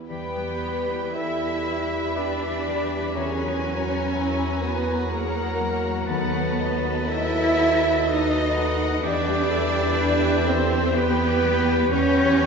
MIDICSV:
0, 0, Header, 1, 12, 480
1, 0, Start_track
1, 0, Key_signature, 1, "minor"
1, 0, Tempo, 1063830
1, 43, Time_signature, 3, 2, 24, 8
1, 524, Tempo, 996678
1, 1964, Tempo, 967742
1, 2924, Tempo, 1001669
1, 3884, Tempo, 964630
1, 6059, End_track
2, 0, Start_track
2, 0, Title_t, "Oboe"
2, 0, Program_c, 0, 68
2, 40, Note_on_c, 0, 83, 42
2, 1466, Note_off_c, 0, 83, 0
2, 1485, Note_on_c, 0, 82, 44
2, 2903, Note_off_c, 0, 82, 0
2, 2915, Note_on_c, 0, 81, 51
2, 4205, Note_off_c, 0, 81, 0
2, 4355, Note_on_c, 0, 79, 60
2, 5772, Note_off_c, 0, 79, 0
2, 5785, Note_on_c, 0, 79, 80
2, 6059, Note_off_c, 0, 79, 0
2, 6059, End_track
3, 0, Start_track
3, 0, Title_t, "Violin section"
3, 0, Program_c, 1, 48
3, 44, Note_on_c, 1, 79, 42
3, 507, Note_off_c, 1, 79, 0
3, 525, Note_on_c, 1, 76, 46
3, 1486, Note_on_c, 1, 80, 50
3, 1487, Note_off_c, 1, 76, 0
3, 2437, Note_on_c, 1, 78, 49
3, 2439, Note_off_c, 1, 80, 0
3, 2916, Note_off_c, 1, 78, 0
3, 2922, Note_on_c, 1, 78, 58
3, 3163, Note_off_c, 1, 78, 0
3, 3173, Note_on_c, 1, 75, 51
3, 3878, Note_off_c, 1, 75, 0
3, 3884, Note_on_c, 1, 75, 60
3, 4116, Note_off_c, 1, 75, 0
3, 4119, Note_on_c, 1, 78, 57
3, 4356, Note_off_c, 1, 78, 0
3, 4356, Note_on_c, 1, 76, 65
3, 5313, Note_on_c, 1, 79, 68
3, 5316, Note_off_c, 1, 76, 0
3, 5789, Note_on_c, 1, 73, 76
3, 5791, Note_off_c, 1, 79, 0
3, 6059, Note_off_c, 1, 73, 0
3, 6059, End_track
4, 0, Start_track
4, 0, Title_t, "Flute"
4, 0, Program_c, 2, 73
4, 40, Note_on_c, 2, 71, 54
4, 524, Note_on_c, 2, 76, 56
4, 531, Note_off_c, 2, 71, 0
4, 1008, Note_on_c, 2, 74, 59
4, 1015, Note_off_c, 2, 76, 0
4, 1477, Note_off_c, 2, 74, 0
4, 1480, Note_on_c, 2, 73, 62
4, 2194, Note_on_c, 2, 71, 49
4, 2202, Note_off_c, 2, 73, 0
4, 2436, Note_on_c, 2, 70, 57
4, 2444, Note_off_c, 2, 71, 0
4, 2915, Note_on_c, 2, 71, 60
4, 2922, Note_off_c, 2, 70, 0
4, 3278, Note_off_c, 2, 71, 0
4, 3405, Note_on_c, 2, 76, 80
4, 3878, Note_on_c, 2, 75, 66
4, 3885, Note_off_c, 2, 76, 0
4, 4346, Note_off_c, 2, 75, 0
4, 4349, Note_on_c, 2, 74, 89
4, 5076, Note_on_c, 2, 72, 67
4, 5083, Note_off_c, 2, 74, 0
4, 5309, Note_on_c, 2, 71, 87
4, 5316, Note_off_c, 2, 72, 0
4, 5789, Note_off_c, 2, 71, 0
4, 5795, Note_on_c, 2, 73, 97
4, 6059, Note_off_c, 2, 73, 0
4, 6059, End_track
5, 0, Start_track
5, 0, Title_t, "Trumpet"
5, 0, Program_c, 3, 56
5, 41, Note_on_c, 3, 71, 53
5, 523, Note_on_c, 3, 76, 57
5, 530, Note_off_c, 3, 71, 0
5, 1009, Note_on_c, 3, 74, 56
5, 1016, Note_off_c, 3, 76, 0
5, 1484, Note_on_c, 3, 73, 57
5, 1492, Note_off_c, 3, 74, 0
5, 2202, Note_on_c, 3, 71, 57
5, 2209, Note_off_c, 3, 73, 0
5, 2437, Note_off_c, 3, 71, 0
5, 2440, Note_on_c, 3, 70, 60
5, 2922, Note_on_c, 3, 71, 57
5, 2929, Note_off_c, 3, 70, 0
5, 3282, Note_off_c, 3, 71, 0
5, 3414, Note_on_c, 3, 76, 76
5, 3881, Note_on_c, 3, 75, 65
5, 3888, Note_off_c, 3, 76, 0
5, 4355, Note_on_c, 3, 74, 83
5, 4362, Note_off_c, 3, 75, 0
5, 5074, Note_off_c, 3, 74, 0
5, 5077, Note_on_c, 3, 72, 75
5, 5315, Note_on_c, 3, 71, 91
5, 5323, Note_off_c, 3, 72, 0
5, 5788, Note_off_c, 3, 71, 0
5, 5791, Note_on_c, 3, 73, 90
5, 6059, Note_off_c, 3, 73, 0
5, 6059, End_track
6, 0, Start_track
6, 0, Title_t, "Violin section"
6, 0, Program_c, 4, 48
6, 38, Note_on_c, 4, 71, 52
6, 504, Note_off_c, 4, 71, 0
6, 525, Note_on_c, 4, 76, 53
6, 1010, Note_on_c, 4, 74, 55
6, 1011, Note_off_c, 4, 76, 0
6, 1485, Note_on_c, 4, 73, 60
6, 1486, Note_off_c, 4, 74, 0
6, 2187, Note_off_c, 4, 73, 0
6, 2206, Note_on_c, 4, 71, 59
6, 2440, Note_on_c, 4, 70, 60
6, 2441, Note_off_c, 4, 71, 0
6, 2921, Note_on_c, 4, 71, 62
6, 2924, Note_off_c, 4, 70, 0
6, 3403, Note_off_c, 4, 71, 0
6, 3414, Note_on_c, 4, 76, 77
6, 3883, Note_off_c, 4, 76, 0
6, 3884, Note_on_c, 4, 75, 67
6, 4358, Note_off_c, 4, 75, 0
6, 4358, Note_on_c, 4, 74, 86
6, 5063, Note_off_c, 4, 74, 0
6, 5079, Note_on_c, 4, 72, 79
6, 5317, Note_off_c, 4, 72, 0
6, 5318, Note_on_c, 4, 71, 83
6, 5790, Note_on_c, 4, 73, 88
6, 5794, Note_off_c, 4, 71, 0
6, 6059, Note_off_c, 4, 73, 0
6, 6059, End_track
7, 0, Start_track
7, 0, Title_t, "French horn section"
7, 0, Program_c, 5, 60
7, 50, Note_on_c, 5, 67, 42
7, 50, Note_on_c, 5, 71, 44
7, 510, Note_off_c, 5, 67, 0
7, 510, Note_off_c, 5, 71, 0
7, 524, Note_on_c, 5, 67, 45
7, 525, Note_on_c, 5, 71, 48
7, 1467, Note_off_c, 5, 67, 0
7, 1468, Note_off_c, 5, 71, 0
7, 1487, Note_on_c, 5, 66, 53
7, 1488, Note_on_c, 5, 70, 55
7, 2420, Note_off_c, 5, 66, 0
7, 2421, Note_off_c, 5, 70, 0
7, 2437, Note_on_c, 5, 66, 48
7, 2439, Note_on_c, 5, 70, 52
7, 2913, Note_off_c, 5, 66, 0
7, 2914, Note_off_c, 5, 70, 0
7, 2924, Note_on_c, 5, 69, 55
7, 2925, Note_on_c, 5, 71, 59
7, 3883, Note_off_c, 5, 69, 0
7, 3883, Note_off_c, 5, 71, 0
7, 3888, Note_on_c, 5, 71, 60
7, 3891, Note_on_c, 5, 69, 61
7, 4351, Note_off_c, 5, 71, 0
7, 4352, Note_off_c, 5, 69, 0
7, 4368, Note_on_c, 5, 67, 75
7, 4368, Note_on_c, 5, 71, 72
7, 5233, Note_off_c, 5, 67, 0
7, 5233, Note_off_c, 5, 71, 0
7, 5318, Note_on_c, 5, 67, 73
7, 5318, Note_on_c, 5, 71, 72
7, 5784, Note_off_c, 5, 67, 0
7, 5784, Note_off_c, 5, 71, 0
7, 5796, Note_on_c, 5, 71, 82
7, 5799, Note_on_c, 5, 67, 89
7, 6059, Note_off_c, 5, 67, 0
7, 6059, Note_off_c, 5, 71, 0
7, 6059, End_track
8, 0, Start_track
8, 0, Title_t, "Viola section"
8, 0, Program_c, 6, 48
8, 43, Note_on_c, 6, 67, 43
8, 506, Note_off_c, 6, 67, 0
8, 526, Note_on_c, 6, 69, 42
8, 527, Note_on_c, 6, 71, 42
8, 771, Note_off_c, 6, 69, 0
8, 771, Note_on_c, 6, 67, 45
8, 1484, Note_on_c, 6, 68, 44
8, 1487, Note_off_c, 6, 67, 0
8, 1722, Note_on_c, 6, 66, 46
8, 1725, Note_off_c, 6, 68, 0
8, 1961, Note_off_c, 6, 66, 0
8, 1961, Note_on_c, 6, 64, 46
8, 2197, Note_off_c, 6, 64, 0
8, 2197, Note_on_c, 6, 66, 52
8, 2434, Note_on_c, 6, 68, 46
8, 2434, Note_on_c, 6, 73, 45
8, 2436, Note_off_c, 6, 66, 0
8, 2441, Note_off_c, 6, 71, 0
8, 2673, Note_on_c, 6, 66, 48
8, 2676, Note_off_c, 6, 68, 0
8, 2911, Note_off_c, 6, 73, 0
8, 2914, Note_on_c, 6, 71, 51
8, 3397, Note_off_c, 6, 66, 0
8, 3399, Note_off_c, 6, 71, 0
8, 3403, Note_on_c, 6, 69, 55
8, 3406, Note_on_c, 6, 66, 55
8, 3634, Note_off_c, 6, 69, 0
8, 3639, Note_on_c, 6, 69, 64
8, 3872, Note_off_c, 6, 69, 0
8, 3874, Note_on_c, 6, 71, 50
8, 4333, Note_off_c, 6, 66, 0
8, 4342, Note_off_c, 6, 71, 0
8, 4346, Note_on_c, 6, 67, 71
8, 4348, Note_on_c, 6, 71, 57
8, 4585, Note_on_c, 6, 69, 65
8, 4586, Note_off_c, 6, 67, 0
8, 4822, Note_off_c, 6, 71, 0
8, 4827, Note_on_c, 6, 71, 63
8, 4828, Note_on_c, 6, 67, 63
8, 4832, Note_off_c, 6, 69, 0
8, 5068, Note_on_c, 6, 69, 66
8, 5072, Note_off_c, 6, 71, 0
8, 5304, Note_off_c, 6, 67, 0
8, 5309, Note_on_c, 6, 67, 61
8, 5312, Note_off_c, 6, 69, 0
8, 5312, Note_on_c, 6, 71, 58
8, 5780, Note_off_c, 6, 67, 0
8, 5785, Note_off_c, 6, 71, 0
8, 5788, Note_on_c, 6, 67, 77
8, 5791, Note_on_c, 6, 71, 70
8, 6059, Note_off_c, 6, 67, 0
8, 6059, Note_off_c, 6, 71, 0
8, 6059, End_track
9, 0, Start_track
9, 0, Title_t, "Cello section"
9, 0, Program_c, 7, 48
9, 41, Note_on_c, 7, 59, 54
9, 505, Note_off_c, 7, 59, 0
9, 522, Note_on_c, 7, 64, 54
9, 1009, Note_off_c, 7, 64, 0
9, 1009, Note_on_c, 7, 62, 58
9, 1486, Note_off_c, 7, 62, 0
9, 1487, Note_on_c, 7, 61, 66
9, 2188, Note_off_c, 7, 61, 0
9, 2202, Note_on_c, 7, 59, 59
9, 2438, Note_on_c, 7, 58, 65
9, 2439, Note_off_c, 7, 59, 0
9, 2913, Note_off_c, 7, 58, 0
9, 2920, Note_on_c, 7, 59, 70
9, 3411, Note_on_c, 7, 64, 84
9, 3412, Note_off_c, 7, 59, 0
9, 3881, Note_off_c, 7, 64, 0
9, 3883, Note_on_c, 7, 63, 77
9, 4356, Note_on_c, 7, 62, 83
9, 4357, Note_off_c, 7, 63, 0
9, 5062, Note_off_c, 7, 62, 0
9, 5075, Note_on_c, 7, 60, 81
9, 5315, Note_off_c, 7, 60, 0
9, 5316, Note_on_c, 7, 59, 96
9, 5787, Note_on_c, 7, 61, 104
9, 5792, Note_off_c, 7, 59, 0
9, 6059, Note_off_c, 7, 61, 0
9, 6059, End_track
10, 0, Start_track
10, 0, Title_t, "Harp"
10, 0, Program_c, 8, 46
10, 0, Note_on_c, 8, 55, 25
10, 0, Note_on_c, 8, 59, 26
10, 0, Note_on_c, 8, 64, 24
10, 44, Note_on_c, 8, 52, 40
10, 156, Note_off_c, 8, 55, 0
10, 161, Note_on_c, 8, 55, 33
10, 276, Note_off_c, 8, 59, 0
10, 282, Note_on_c, 8, 59, 32
10, 310, Note_off_c, 8, 64, 0
10, 406, Note_on_c, 8, 64, 35
10, 523, Note_on_c, 8, 67, 33
10, 648, Note_on_c, 8, 71, 35
10, 770, Note_on_c, 8, 76, 39
10, 885, Note_off_c, 8, 71, 0
10, 891, Note_on_c, 8, 71, 35
10, 1005, Note_off_c, 8, 67, 0
10, 1011, Note_on_c, 8, 67, 36
10, 1123, Note_off_c, 8, 64, 0
10, 1129, Note_on_c, 8, 64, 35
10, 1247, Note_off_c, 8, 55, 0
10, 1252, Note_on_c, 8, 55, 33
10, 1364, Note_off_c, 8, 59, 0
10, 1370, Note_on_c, 8, 59, 36
10, 1482, Note_off_c, 8, 52, 0
10, 1487, Note_on_c, 8, 52, 45
10, 1506, Note_off_c, 8, 67, 0
10, 1506, Note_off_c, 8, 71, 0
10, 1507, Note_off_c, 8, 59, 0
10, 1508, Note_off_c, 8, 55, 0
10, 1605, Note_on_c, 8, 54, 35
10, 1723, Note_on_c, 8, 58, 34
10, 1964, Note_on_c, 8, 66, 34
10, 2084, Note_on_c, 8, 70, 42
10, 2205, Note_on_c, 8, 73, 39
10, 2316, Note_off_c, 8, 70, 0
10, 2322, Note_on_c, 8, 70, 35
10, 2436, Note_off_c, 8, 66, 0
10, 2442, Note_on_c, 8, 66, 42
10, 2562, Note_on_c, 8, 61, 37
10, 2668, Note_off_c, 8, 76, 0
10, 2674, Note_off_c, 8, 54, 0
10, 2680, Note_on_c, 8, 54, 36
10, 2795, Note_off_c, 8, 58, 0
10, 2801, Note_on_c, 8, 58, 39
10, 2920, Note_on_c, 8, 51, 54
10, 2942, Note_off_c, 8, 64, 0
10, 2943, Note_off_c, 8, 52, 0
10, 2943, Note_off_c, 8, 58, 0
10, 2943, Note_off_c, 8, 70, 0
10, 2944, Note_off_c, 8, 61, 0
10, 2944, Note_off_c, 8, 73, 0
10, 3041, Note_on_c, 8, 57, 44
10, 3166, Note_on_c, 8, 59, 42
10, 3284, Note_off_c, 8, 66, 0
10, 3290, Note_on_c, 8, 66, 41
10, 3415, Note_on_c, 8, 69, 41
10, 3530, Note_on_c, 8, 71, 45
10, 3647, Note_on_c, 8, 78, 45
10, 3759, Note_off_c, 8, 71, 0
10, 3765, Note_on_c, 8, 71, 41
10, 3874, Note_off_c, 8, 69, 0
10, 3879, Note_on_c, 8, 69, 53
10, 3996, Note_off_c, 8, 66, 0
10, 4002, Note_on_c, 8, 66, 50
10, 4113, Note_off_c, 8, 57, 0
10, 4119, Note_on_c, 8, 57, 45
10, 4230, Note_off_c, 8, 59, 0
10, 4236, Note_on_c, 8, 59, 46
10, 4353, Note_on_c, 8, 52, 60
10, 4374, Note_off_c, 8, 69, 0
10, 4374, Note_off_c, 8, 78, 0
10, 4375, Note_off_c, 8, 51, 0
10, 4376, Note_off_c, 8, 57, 0
10, 4376, Note_off_c, 8, 66, 0
10, 4377, Note_off_c, 8, 54, 0
10, 4474, Note_on_c, 8, 55, 53
10, 4589, Note_off_c, 8, 59, 0
10, 4595, Note_on_c, 8, 59, 47
10, 4714, Note_on_c, 8, 67, 53
10, 4830, Note_off_c, 8, 59, 0
10, 4836, Note_on_c, 8, 59, 53
10, 4951, Note_off_c, 8, 71, 0
10, 4957, Note_on_c, 8, 71, 53
10, 5075, Note_on_c, 8, 79, 60
10, 5188, Note_off_c, 8, 71, 0
10, 5194, Note_on_c, 8, 71, 57
10, 5308, Note_off_c, 8, 67, 0
10, 5314, Note_on_c, 8, 67, 56
10, 5429, Note_off_c, 8, 59, 0
10, 5435, Note_on_c, 8, 59, 58
10, 5547, Note_off_c, 8, 55, 0
10, 5553, Note_on_c, 8, 55, 49
10, 5665, Note_off_c, 8, 59, 0
10, 5784, Note_off_c, 8, 52, 0
10, 5790, Note_on_c, 8, 52, 71
10, 5906, Note_off_c, 8, 55, 0
10, 5912, Note_on_c, 8, 55, 53
10, 6059, Note_off_c, 8, 52, 0
10, 6059, Note_off_c, 8, 55, 0
10, 6059, Note_off_c, 8, 67, 0
10, 6059, Note_off_c, 8, 71, 0
10, 6059, Note_off_c, 8, 79, 0
10, 6059, End_track
11, 0, Start_track
11, 0, Title_t, "Bassoon"
11, 0, Program_c, 10, 70
11, 40, Note_on_c, 10, 55, 47
11, 1485, Note_on_c, 10, 54, 53
11, 1492, Note_off_c, 10, 55, 0
11, 4228, Note_off_c, 10, 54, 0
11, 4355, Note_on_c, 10, 55, 66
11, 5772, Note_off_c, 10, 55, 0
11, 5795, Note_on_c, 10, 59, 85
11, 6059, Note_off_c, 10, 59, 0
11, 6059, End_track
12, 0, Start_track
12, 0, Title_t, "Double bass section"
12, 0, Program_c, 11, 48
12, 41, Note_on_c, 11, 40, 51
12, 2902, Note_off_c, 11, 40, 0
12, 2924, Note_on_c, 11, 39, 65
12, 4355, Note_on_c, 11, 40, 76
12, 4358, Note_off_c, 11, 39, 0
12, 5772, Note_off_c, 11, 40, 0
12, 5789, Note_on_c, 11, 40, 79
12, 6059, Note_off_c, 11, 40, 0
12, 6059, End_track
0, 0, End_of_file